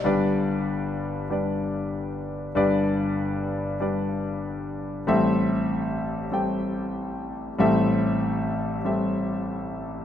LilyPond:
<<
  \new Staff \with { instrumentName = "Grand piano" } { \time 6/8 \key g \major \tempo 4. = 48 <g d' b' d''>4. <g d' b' d''>4. | <g d' b' d''>4. <g d' b' d''>4. | <g c' a' e''>4. <g c' a' g''>4. | <g c' a' e''>4. <g c' a' e''>4. | }
  \new Staff \with { instrumentName = "Grand piano" } { \clef bass \time 6/8 \key g \major <g,, g,>2. | <g,, g,>2. | <a,, a,>2. | <a,, a,>2. | }
>>